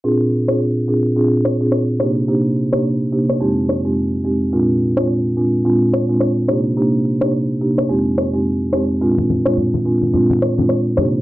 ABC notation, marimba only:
X:1
M:4/4
L:1/16
Q:"Swing 16ths" 1/4=107
K:Bbmix
V:1 name="Marimba"
[B,,CDFA] z2 [B,,CDFA] z2 [B,,CDFA] z [B,,CDFA] z2 [B,,CDFA] z2 [C,B,DEG] z | [C,B,DEG] z2 [C,B,DEG] z2 [C,B,DEG] z [F,,A,CEG] z2 [F,,A,CEG] z2 [F,,A,CEG] z | [B,,A,CDF] z2 [B,,A,CDF] z2 [B,,A,CDF] z [B,,A,CDF] z2 [B,,A,CDF] z2 [C,B,DEG] z | [C,B,DEG] z2 [C,B,DEG] z2 [C,B,DEG] z [F,,A,CEG] z2 [F,,A,CEG] z2 [F,,A,CEG] z |
[B,,A,CDF] z2 [B,,A,CDF] z2 [B,,A,CDF] z [B,,A,CDF] z2 [B,,A,CDF] z2 [C,B,DEG] z |]